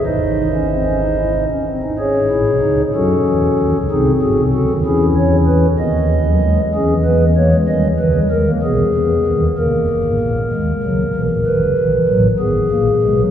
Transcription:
<<
  \new Staff \with { instrumentName = "Pipe organ" } { \time 6/8 \key cis \minor \tempo 4. = 63 << { dis''2~ dis''8 r8 | cis''4. a'4. | gis'8 fis'8 a'8 gis'8 cis''8 b'8 | dis''4. gis'8 b'8 cis''8 |
dis''8 b'8 ais'8 gis'4. | ais'2. | b'4. gis'4. | } \\ { bis'2~ bis'8 r8 | gis'4. fis'4. | dis'8 gis'8 fis'8 e'4. | r2. |
r2. | r2. | r2. | } >> }
  \new Staff \with { instrumentName = "Pipe organ" } { \clef bass \time 6/8 \key cis \minor << { dis'8. cis'16 bis16 cis'16 dis'16 e'16 dis'16 cis'16 bis16 dis'16 | cis'8 e'8 dis'8 cis'4. | bis4. cis'4. | b16 dis16 e16 fis16 gis8 cis'8 b8 ais16 gis16 |
g8 dis16 g16 gis16 ais16 b4. | ais4. gis8 fis8 e8 | dis16 cis16 dis16 e16 fis8 b8 ais8 gis16 fis16 | } \\ { <gis,, gis,>2~ <gis,, gis,>8 r8 | r16 <gis,, gis,>16 <a,, a,>16 <b,, b,>16 <cis, cis>8 <fis, fis>8 <e, e>8 <dis, dis>16 <cis, cis>16 | <bis,, bis,>8 <gis,, gis,>16 <bis,, bis,>16 <cis, cis>16 <dis, dis>16 <e, e>4. | <dis, dis>4. <e, e>4. |
<dis, dis>8 <cis, cis>8 <dis, dis>8 <b,, b,>8 <e, e>8 <dis, dis>8 | <d, d>16 <eis,, eis,>16 <fis,, fis,>16 <gis,, gis,>16 <ais,, ais,>8 <dis, dis>8 <cis, cis>8 <b,, b,>16 <ais,, ais,>16 | <fis,, fis,>8 <b,, b,>8 <a,, a,>8 <gis,, gis,>8 <ais,, ais,>8 <b,, b,>8 | } >> }
>>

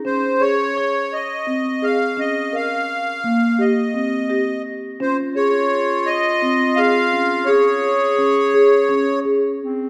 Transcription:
<<
  \new Staff \with { instrumentName = "Glockenspiel" } { \time 7/8 \key des \lydian \tempo 4 = 85 bes'''8 r8 des'''2~ des'''8~ | des'''8 r2 bes'''4~ | bes'''8 r4. bes'''4.~ | bes'''8 r2. | }
  \new Staff \with { instrumentName = "Accordion" } { \time 7/8 \key des \lydian c''8 des''4 ees''4 f''8 ees''8 | f''4. ees''4. r8 | c''8 des''4 ees''4 f''4 | des''2~ des''8 r4 | }
  \new Staff \with { instrumentName = "Clarinet" } { \time 7/8 \key des \lydian r2. r8 | r2. r8 | f'2.~ f'8 | aes'2~ aes'8 r8 c'8 | }
  \new Staff \with { instrumentName = "Marimba" } { \time 7/8 \key des \lydian des'8 aes'4 r8 c'8 aes'8 des'8 | bes'4 bes8 g'8 c'8 g'4 | des'8 aes'4 r8 c'8 aes'8 des'8 | aes'4 des'8 aes'8 des'8 aes'4 | }
>>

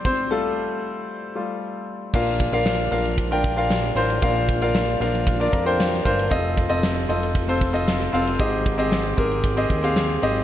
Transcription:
<<
  \new Staff \with { instrumentName = "Grand piano" } { \time 4/4 \key bes \major \tempo 4 = 115 << { <c' c''>8 a'2 r4. | r1 | r2 r8 bes''16 g''16 f''4 | r1 |
r1 | } \\ { r1 | <d' f' bes' f''>8 r16 <d' f' bes' f''>8 r16 <d' f' bes' f''>8 r16 <d' f' bes' g''>16 r16 <d' f' bes' f''>8 r16 <d' f' bes' c''>16 r16 | <d' f' bes' f''>8 r16 <d' f' bes' f''>8 r16 <d' f' bes' f''>8 r16 <d' f' bes' d''>16 r16 <d' f' bes' c''>8 r16 <d' f' bes' c''>16 r16 | <c' f' a' ees''>8 r16 <c' f' a' ees''>8 r16 <c' f' a' ees''>8 r16 <c' f' a' c''>16 r16 <c' f' a' ees''>8 r16 <c' f' a' f''>16 r16 |
<c' g' aes' ees''>8 r16 <c' g' aes' ees''>8 r16 <c' g' aes' bes'>8 r16 <c' g' aes' ees''>16 r16 <c' g' aes' f''>8 r16 <c' g' aes' ees''>16 r16 | } >> }
  \new Staff \with { instrumentName = "Grand piano" } { \clef bass \time 4/4 \key bes \major r8 <g a f'>8 r4. <g a f'>8 r4 | bes,4. r2 r8 | bes,4. r2 r8 | r1 |
aes,4. r2 r8 | }
  \new Staff \with { instrumentName = "Analog synth bass" } { \clef bass \time 4/4 \key bes \major r1 | bes,,8. bes,,8. bes,,2 a,,8 | bes,,4. bes,,4 f,4 g,,8 | f,,8. f,,8. f,,2 f,,8 |
aes,,4. aes,,4 ees,4 aes,,8 | }
  \new DrumStaff \with { instrumentName = "Drums" } \drummode { \time 4/4 <cymc bd>4 r4 r4 r4 | <cymc bd>8 <bd cymr>16 cymr16 <cymr sn>16 cymr16 cymr16 cymr16 <bd cymr>16 cymr16 <bd cymr>16 cymr16 <cymr sn>16 <cymr sn>16 cymr16 cymr16 | <bd cymr>8 <bd cymr>16 cymr16 <cymr sn>16 cymr16 cymr16 cymr16 <bd cymr>16 cymr16 <bd cymr>16 cymr16 <cymr sn>16 <cymr sn>16 <bd cymr>16 cymr16 | <bd cymr>8 <bd cymr>16 cymr16 <cymr sn>8 cymr16 cymr16 <bd cymr>8 <bd cymr>16 cymr16 <cymr sn>16 <cymr sn>16 cymr16 cymr16 |
<bd cymr>8 <bd cymr>16 cymr16 <cymr sn>8 <bd cymr>16 cymr16 <bd cymr>16 cymr16 <bd cymr>16 cymr16 <cymr sn>8 <hho cymr>16 cymr16 | }
>>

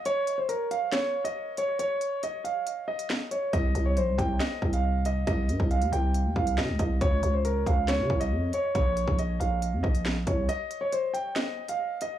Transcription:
<<
  \new Staff \with { instrumentName = "Grand piano" } { \time 4/4 \key c \phrygian \tempo 4 = 138 des''8. c''16 bes'8 f''8 des''8. ees''8. des''8 | des''4 ees''8 f''4 ees''4 des''8 | ees''8. des''16 c''8 g''8 ees''8. f''8. ees''8 | ees''4 f''8 g''4 f''8 ees''8 ees''8 |
des''8. c''16 bes'8 f''8 des''8. ees''8. des''8 | des''4 ees''8 f''4 ees''4 des''8 | ees''8. des''16 c''8 g''8 ees''8. f''8. ees''8 | }
  \new Staff \with { instrumentName = "808-style bass" } { \clef bass \time 4/4 \key c \phrygian r1 | r1 | c,8 c,8 bes,,16 c,16 c,8 r8 c,4. | c,8 g,16 c,8 ees,16 c,8. ees,16 c,8 c16 c,16 c,8 |
des,8 des,4 des,8. des16 c,8 f,8 r8 | bes,,8. bes,,8. bes,,8. f,16 bes,,4 c,8 | r1 | }
  \new DrumStaff \with { instrumentName = "Drums" } \drummode { \time 4/4 hh8 hh8 hh8 hh8 <hc hh sn>8. hh16 r8 hh8 | hh8 hh8 hh8 hh8 hh8. hh16 <hc sn>8 hh8 | <hh bd>8 hh8 hh8 <hh bd>8 <hc hh sn>8 bd16 hh16 r8 hh8 | <hh bd>8 hh16 bd16 hh16 hh16 hh8 hh8 bd16 hh16 <hc sn>8 <hh bd>8 |
<hh bd>8 hh8 hh8 <hh bd>8 <hc hh sn>8 bd16 hh16 r8 hh8 | <hh bd>8 hh16 bd16 hh8 hh8 hh8 bd16 hh16 <hc sn>8 <hh bd>8 | hh8 hh8 hh8 hh8 <hc hh sn>8. hh16 r8 hh8 | }
>>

